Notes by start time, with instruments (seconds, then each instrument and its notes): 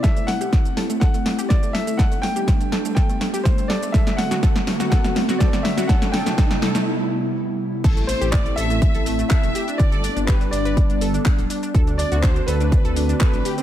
Already playing: analog synth pad E4
0.03 detuned saw bass A1, analog synth pad A3 C4, synth pluck A4, grand piano E5, kick, snare, closed hi-hat, riser, shaker
0.16 synth pluck A3, closed hi-hat, shaker
0.27 synth pluck A3, grand piano F#5, snare, open hi-hat
0.41 detuned saw bass A1, synth pluck G4, closed hi-hat, shaker
0.53 synth pluck A3, kick, snare, closed hi-hat, shaker
0.65 synth pluck A3, closed hi-hat, shaker
0.77 detuned saw bass A1, synth pluck A4, snare, open hi-hat
0.90 synth pluck A3, closed hi-hat, shaker
1.00 synth pluck A4, grand piano F#5, kick, snare, closed hi-hat, shaker
1.14 detuned saw bass A1, synth pluck A3, closed hi-hat, shaker
1.26 synth pluck A3, snare, open hi-hat
1.39 synth pluck G4, closed hi-hat, shaker
1.49 synth pluck A3, grand piano D5, kick, snare, closed hi-hat, shaker
1.63 detuned saw bass A1, synth pluck A3, closed hi-hat, shaker
1.73 synth pluck A4, grand piano E5, snare, open hi-hat
1.87 synth pluck A3, closed hi-hat, shaker
1.98 detuned saw bass G1, analog synth pad G3 B3 D4, synth pluck A4, grand piano F#5, kick, snare, closed hi-hat, shaker
2.12 synth pluck A3, closed hi-hat, shaker
2.22 synth pluck A3, grand piano G5, snare, open hi-hat
2.36 detuned saw bass G1, synth pluck G4, closed hi-hat, shaker
2.48 synth pluck A3, kick, snare, closed hi-hat, shaker
2.60 synth pluck A3, closed hi-hat, shaker
2.72 detuned saw bass G1, synth pluck A4, snare, open hi-hat
2.85 synth pluck A3, closed hi-hat, shaker
2.95 synth pluck A4, grand piano G5, kick, snare, closed hi-hat, shaker
3.09 detuned saw bass G1, synth pluck A3, closed hi-hat, shaker
3.21 synth pluck A3, snare, open hi-hat
3.34 synth pluck G4, closed hi-hat, shaker
3.44 synth pluck A3, grand piano C5, kick, snare, closed hi-hat, shaker
3.58 detuned saw bass G1, synth pluck A3, closed hi-hat, shaker
3.68 synth pluck A4, grand piano D5, snare, open hi-hat
3.82 synth pluck A3, closed hi-hat, shaker
3.92 detuned saw bass D2, analog synth pad D3 A3 C4 F#4, synth pluck A4, grand piano E5, kick, snare, closed hi-hat, shaker
4.07 synth pluck A3, snare, closed hi-hat, shaker
4.17 synth pluck A3, grand piano F#5, snare, open hi-hat
4.31 detuned saw bass D2, synth pluck F#4, snare, closed hi-hat, shaker
4.43 synth pluck A4, kick, snare, closed hi-hat, shaker
4.56 synth pluck A3, snare, closed hi-hat, shaker
4.67 detuned saw bass D2, synth pluck A3, snare, open hi-hat
4.80 synth pluck F#4, snare, closed hi-hat, shaker
4.90 synth pluck A4, grand piano F#5, kick, snare, closed hi-hat, shaker
5.04 detuned saw bass D2, synth pluck A3, snare, closed hi-hat, shaker
5.16 synth pluck A3, snare, open hi-hat
5.29 synth pluck F#4, snare, closed hi-hat, shaker
5.39 synth pluck A4, grand piano D5, kick, snare, closed hi-hat, shaker
5.53 detuned saw bass D2, synth pluck A3, snare, closed hi-hat, shaker
5.63 synth pluck A3, grand piano E5, snare, open hi-hat
5.77 synth pluck F#4, snare, closed hi-hat, shaker
5.88 detuned saw bass C2, analog synth pad C3 G3 B3 E4, synth pluck A4, grand piano F#5, kick, snare, closed hi-hat, shaker
6.02 synth pluck A3, snare, closed hi-hat, shaker
6.12 synth pluck A4, grand piano G5, snare, open hi-hat
6.26 detuned saw bass C2, synth pluck A3, snare, closed hi-hat, shaker
6.38 synth pluck A4, kick, snare, closed hi-hat, shaker
6.51 synth pluck A3, snare, closed hi-hat, shaker
6.62 detuned saw bass C2, synth pluck A4, snare, open hi-hat
6.75 synth pluck A3, snare, closed hi-hat, shaker
7.84 detuned saw bass A1, analog synth pad A3 C4 E4, synth pluck A4, kick, closed hi-hat, crash, shaker
7.97 synth pluck A3, closed hi-hat, shaker
8.07 synth pluck A3, grand piano C5, violin section C5, open hi-hat, shaker
8.21 detuned saw bass A1, synth pluck G4, closed hi-hat, shaker
8.32 synth pluck A3, grand piano D5, violin section D5, kick, clap, closed hi-hat, shaker
8.46 synth pluck A3, closed hi-hat, shaker
8.56 detuned saw bass A1, synth pluck A4, grand piano E5, violin section E5, open hi-hat, shaker
8.70 synth pluck A3, closed hi-hat, shaker
8.82 synth pluck A3, kick, closed hi-hat, shaker
8.94 detuned saw bass A1, synth pluck A4, closed hi-hat, shaker
9.06 synth pluck A3, open hi-hat, shaker
9.19 synth pluck A3, closed hi-hat, shaker
9.29 synth pluck A4, grand piano E5, violin section E5, kick, clap, closed hi-hat, shaker
9.43 detuned saw bass E1, synth pluck A3, closed hi-hat, shaker
9.55 synth pluck G4, open hi-hat, shaker
9.68 synth pluck D4, closed hi-hat, shaker
9.78 detuned saw bass G1, analog synth pad G3 B3 D4, synth pluck D4, grand piano D5, violin section D5, kick, closed hi-hat, shaker
9.92 synth pluck A4, closed hi-hat, shaker
10.04 synth pluck D4, open hi-hat, shaker
10.16 detuned saw bass G1, synth pluck D4, closed hi-hat, shaker
10.27 synth pluck G4, grand piano B4, violin section B4, kick, clap, closed hi-hat, shaker
10.41 synth pluck D4, closed hi-hat, shaker
10.51 detuned saw bass G1, synth pluck D4, violin section D5, grand piano D5, open hi-hat, shaker
10.65 synth pluck B4, closed hi-hat, shaker
10.77 synth pluck D4, kick, closed hi-hat, shaker
10.90 detuned saw bass G1, synth pluck D4, closed hi-hat, shaker
11.01 synth pluck A4, open hi-hat, shaker
11.14 synth pluck D4, closed hi-hat, shaker
11.26 synth pluck D4, kick, clap, closed hi-hat, shaker
11.38 detuned saw bass D1, closed hi-hat, shaker
11.50 synth pluck D4, open hi-hat, shaker
11.63 synth pluck D4, closed hi-hat, shaker
11.75 detuned saw bass D2, analog synth pad D3 A3 C4 F#4, synth pluck A4, kick, closed hi-hat, shaker
11.87 synth pluck D4, closed hi-hat, shaker
11.98 synth pluck D4, violin section D5, grand piano D5, open hi-hat, shaker
12.12 detuned saw bass D2, synth pluck F#4, closed hi-hat, shaker
12.22 synth pluck D4, violin section C5, grand piano C5, kick, clap, closed hi-hat, shaker
12.36 synth pluck D4, closed hi-hat, shaker
12.46 detuned saw bass D2, synth pluck A4, violin section B4, grand piano B4, open hi-hat, shaker
12.60 synth pluck D4, closed hi-hat, shaker
12.72 synth pluck D4, kick, closed hi-hat, shaker
12.85 detuned saw bass D2, synth pluck A4, closed hi-hat, shaker
12.96 synth pluck D4, open hi-hat, shaker
13.09 synth pluck D4, closed hi-hat, shaker
13.19 synth pluck A4, grand piano B4, violin section B4, kick, clap, closed hi-hat, shaker
13.33 detuned saw bass A1, synth pluck D4, closed hi-hat, shaker
13.45 synth pluck G4, open hi-hat, shaker
13.58 synth pluck C4, closed hi-hat, shaker